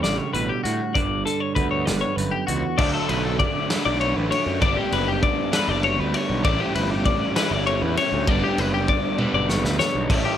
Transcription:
Already playing: clean electric guitar D3 G3 E4
0.03 picked electric bass A1, clean electric guitar C#3 D5, snare, closed hi-hat
0.18 clean electric guitar C#5
0.33 picked electric bass A1, clean electric guitar B2 B4, closed hi-hat
0.49 clean electric guitar G4
0.64 picked electric bass A2, clean electric guitar A2 F#4, closed hi-hat
0.94 picked electric bass G1, clean electric guitar G2 D5, kick, closed hi-hat
1.26 clean electric guitar D3 A4, closed hi-hat
1.40 clean electric guitar C#5
1.55 picked electric bass D2, clean electric guitar B3 B4, kick, closed hi-hat
1.71 clean electric guitar C#5
1.86 picked electric bass G1, clean electric guitar G2 D5, snare, closed hi-hat
2.01 clean electric guitar C#5
2.16 picked electric bass G1, clean electric guitar F#2 B4, closed hi-hat
2.31 clean electric guitar G4
2.47 picked electric bass C#2, clean electric guitar E2 F#4, closed hi-hat
2.78 picked electric bass D2, overdriven electric guitar D3 F#3 A3, clean electric guitar D5, kick, crash
2.82 overdriven electric guitar D4
2.93 clean electric guitar A4
3.09 picked electric bass B1, clean electric guitar B4, ride
3.24 clean electric guitar A4
3.39 clean electric guitar D5, kick, ride
3.70 overdriven electric guitar D3 F#3 A3 D4, clean electric guitar B4, snare, ride
3.85 picked electric bass B1, clean electric guitar D5
4.01 clean electric guitar C#5, ride
4.16 picked electric bass A1, clean electric guitar B4
4.31 clean electric guitar C#5, ride
4.47 picked electric bass F#2
4.61 picked electric bass G1, overdriven electric guitar G2 D3 G3 B3 D4, clean electric guitar D5, kick, ride
4.77 clean electric guitar G4
4.92 picked electric bass F#1, clean electric guitar B4, ride
5.08 clean electric guitar G4
5.23 clean electric guitar D5, kick, ride
5.52 overdriven electric guitar D3 G3 B3 D4, clean electric guitar B4, snare, ride
5.56 overdriven electric guitar G2
5.68 picked electric bass F#1, clean electric guitar D5
5.83 clean electric guitar C#5, ride
5.99 picked electric bass D2, clean electric guitar B4
6.14 clean electric guitar C#5, ride
6.30 picked electric bass B1
6.43 picked electric bass A1, overdriven electric guitar A2 E3 G3 C#4 E4, clean electric guitar D5, kick, ride
6.60 clean electric guitar G4
6.75 picked electric bass G1, clean electric guitar B4, ride
6.90 clean electric guitar G4
7.05 clean electric guitar D5, kick, ride
7.36 overdriven electric guitar A2 E3 G3 C#4 E4, clean electric guitar B4, snare, ride
7.51 picked electric bass G1, clean electric guitar D5
7.67 clean electric guitar C#5, ride
7.82 picked electric bass E2, clean electric guitar B4
7.97 clean electric guitar C#5, ride
8.13 picked electric bass D2
8.27 picked electric bass G1, overdriven electric guitar G2 D3 G3 B3 D4, clean electric guitar D5, kick, ride
8.44 clean electric guitar G4
8.58 picked electric bass F#1, clean electric guitar B4, ride
8.74 clean electric guitar G4
8.88 clean electric guitar D5, kick, ride
9.18 overdriven electric guitar G2 D3 G3 B3 D4, clean electric guitar B4, high tom
9.34 picked electric bass F#1, clean electric guitar D5
9.49 clean electric guitar C#5, snare
9.64 picked electric bass D2, clean electric guitar B4, snare
9.79 clean electric guitar C#5, snare
9.95 picked electric bass B1
10.09 picked electric bass A1, overdriven electric guitar A2 E3 G3 C#4 E4, clean electric guitar D5, kick, crash, ride
10.25 clean electric guitar G4

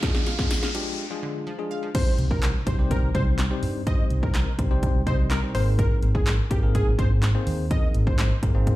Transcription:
Already playing: riser
0.02 synth pluck F3, tine electric piano G#3 D4 F4 G#4, kick, snare, closed hi-hat
0.15 synth pluck D3, snare
0.26 synth pluck F5, snare, closed hi-hat, tambourine
0.38 synth pluck F3, tine electric piano G#3 D4 F4 G#4, kick, snare
0.51 snare, closed hi-hat, tambourine
0.63 synth pluck F5, snare
0.74 synth pluck F3, tine electric piano G#3 D4 F4 G4, closed hi-hat, tambourine
1.10 synth pluck F3, tine electric piano G#3 D4 F4 G#4
1.23 synth pluck D3
1.47 synth pluck F3
1.58 tine electric piano G#3 D4 F4 G#4
1.71 synth pluck F5
1.83 synth pluck F3
1.95 tine electric piano G3 C4 D#4 G4 C5, digital synth lead C5, kick, closed hi-hat, crash, impact
2.18 fingered electric bass C2, closed hi-hat
2.31 digital synth lead A#4, kick
2.43 snare, clap, closed hi-hat
2.67 fingered electric bass C2, tine electric piano G3 C4 D#4 G4 C5, digital synth lead C5, kick, closed hi-hat
2.79 tine electric piano G3 C4 D#4 G4 C5
2.91 digital synth lead A#4, kick, closed hi-hat
3.03 fingered electric bass C2
3.15 fingered electric bass C2, tine electric piano G3 C4 D#4 G4 C5, digital synth lead C5, kick, closed hi-hat
3.39 snare, clap, closed hi-hat
3.51 tine electric piano G3 C4 D#4 G4 C5
3.63 fingered electric bass G2, open hi-hat
3.87 tine electric piano G3 C4 D#4 G4 C5, digital synth lead D#5, kick, closed hi-hat
4.10 fingered electric bass C2, closed hi-hat
4.23 digital synth lead A#4, kick
4.35 snare, clap, closed hi-hat
4.58 fingered electric bass C2, tine electric piano G3 C4 D#4 G4 C5, kick, closed hi-hat
4.71 tine electric piano G3 C4 D#4 G4 C5
4.83 kick, closed hi-hat
4.95 fingered electric bass C2
5.07 fingered electric bass C2, tine electric piano G3 C4 D#4 G4 D#5, digital synth lead C5, kick, closed hi-hat
5.31 digital synth lead A#4, snare, clap, closed hi-hat
5.42 tine electric piano G3 C4 D#4 G4 C5
5.54 fingered electric bass G#1, tine electric piano A#3 C4 D#4 G#4 A#4, digital synth lead C5, open hi-hat
5.79 digital synth lead A#4, kick, closed hi-hat
6.03 fingered electric bass G#1, closed hi-hat
6.15 digital synth lead G#4, kick
6.27 snare, clap, closed hi-hat
6.51 fingered electric bass G#1, tine electric piano A#3 C4 D#4 G#4 A#4, digital synth lead G4, kick, closed hi-hat
6.62 tine electric piano A#3 C4 D#4 G#4 A#4
6.75 digital synth lead G#4, kick, closed hi-hat
6.87 fingered electric bass G#1
6.99 fingered electric bass G#1, tine electric piano A#3 C4 D#4 G#4 C5, digital synth lead C5, kick, closed hi-hat
7.23 snare, clap, closed hi-hat
7.35 tine electric piano A#3 C4 D#4 G#4 C5
7.47 fingered electric bass D#2, open hi-hat
7.71 tine electric piano A#3 C4 D#4 G#4 A#4, digital synth lead D#5, kick, closed hi-hat
7.94 fingered electric bass G#1, closed hi-hat
8.07 digital synth lead C5, kick
8.19 snare, clap, closed hi-hat
8.42 fingered electric bass G#1, tine electric piano A#3 C4 D#4 G#4 A#4, kick, closed hi-hat
8.55 tine electric piano A#3 C4 D#4 G#4 C5
8.67 kick, closed hi-hat

